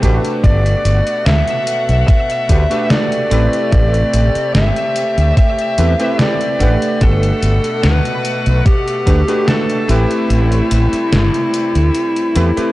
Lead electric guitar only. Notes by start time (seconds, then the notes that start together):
0.44 D5
1.26 E5
2.08 E5
2.91 D5
3.73 D5
4.55 E5
5.38 E5
6.19 D5
7.02 A4
7.84 B4
8.66 G4
9.49 A4
9.90 E4